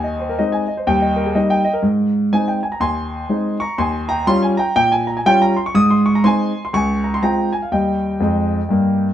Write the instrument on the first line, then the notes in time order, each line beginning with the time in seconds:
grand piano
Already playing: D#2 G#5
0.04 D#5
0.19 C5
0.29 A#4
0.39 G#3 C4 D#4 D#5
0.52 G#5
0.68 D#5
0.77 C5
0.87 D#2 G3 G5
1.02 D#5
1.16 A#4
1.26 G#4
1.35 G3 A#3 D#4 D#5
1.50 G5
1.65 D#5
1.74 A#4
1.82 G#2
2.33 G#3 C4 D#4 G#5
2.48 G5
2.63 G#5
2.72 A#5
2.80 D#2 G#5 C6
3.29 G#3 C4 D#4
3.60 A#5 C#6
3.78 D#2 G#5 C6
4.09 G5 A#5
4.27 G3 C#4 F4 C6
4.43 G#5
4.57 G5 A#5
4.76 A#2 G5
4.92 G#5
5.07 A#5
5.17 G#5
5.26 G3 C#4 F4 G5
5.42 A#5
5.57 C6
5.66 C#6
5.75 G#2 D#6
5.91 C6
6.06 C#6
6.15 A#5
6.24 G#3 C4 D#4 G#5 C6
6.65 C6
6.73 C#2 G#5 C#6
7.04 A#5
7.14 C6
7.22 G#3 C4 F4 G5 A#5
7.53 G#5
7.62 F5
7.72 D#2 G3 D#5 G5
8.20 F2 G#3
8.69 G2 A#3